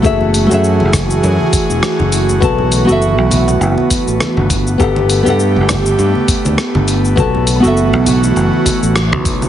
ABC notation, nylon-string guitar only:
X:1
M:4/4
L:1/16
Q:"Swing 16ths" 1/4=101
K:Bm
V:1 name="Nylon-string guitar"
[A,F^Ge]3 [A,FGe]12- [A,FGe] | [B,FAa]3 [B,FAe]8- [B,FAe]3 z2 | [B,GAf]3 [B,GAf]12- [B,GAf] | [B,FAa]3 [B,FAe]12- [B,FAe] |]